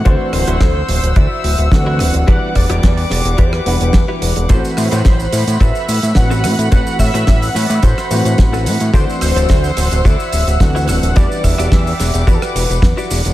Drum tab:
HH |x-oxx-oxx-oxx-ox|x-oxxooxx-oxx-ox|x-oxx-oxx-oxx-ox|x-oxxooxx-oxx-ox|
SH |----------------|----------------|xxxxxxxxxxxxxxxx|xxxxxxxxxxxxxxxx|
SD |--r-o-------o-r-|--rro-o--r--o---|--r-o-------o-r-|--rro-o--r--o---|
BD |o---o---o---o---|o-o-o---o---o---|o---o---o---o---|o-o-o---o---o---|

HH |x-oxx-oxx-oxx-ox|x-oxxooxx-oxx-ox|
SH |xxxxxxxxxxxxxxxx|xxxxxxxxxxxxxxxx|
SD |--r-o-------o-r-|--rro-o--r--o---|
BD |o---o---o---o---|o-o-o---o---o---|